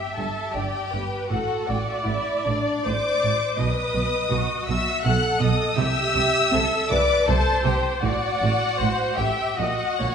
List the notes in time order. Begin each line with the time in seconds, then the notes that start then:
Already playing: G4 E5 G5
0.16 G1 G2 A4 A5
0.52 G1 G2 G4 D5 G5
0.92 G1 G2 B4
1.30 A1 A2 F#4 A4 F#5
1.67 A1 A2 D5 G5
1.80 F#5
1.89 E5
1.97 F#5
2.04 A1 A2 E4 E5
2.46 A1 A2 D4 D5
2.85 A1 A2 C5 D5 D6
3.24 A1 A2
3.57 B1 B2 B4 D#5 D#6
3.95 B1 B2
4.30 B1 B2 F#4
4.67 B1 B2 E5 E6
5.04 B1 B2 A4 F#5 F#6
5.40 B1 B2 D#5 D#6
5.77 C2 C3 G4 E5 E6
6.15 C2 C3
6.52 C2 C3 A4
6.90 C2 C3 B4 D5 D6
7.27 C2 C3 A4 C5 A5
7.63 C2 C3 G4 G5
8.01 A1 A2 F#4 D5 F#5
8.41 A1 A2
8.78 A1 A2 C5
9.17 A1 A2 G4 E5 G5
9.57 A#1 A#2 F#4 D#5 F#5
9.99 A#1 A#2 C#5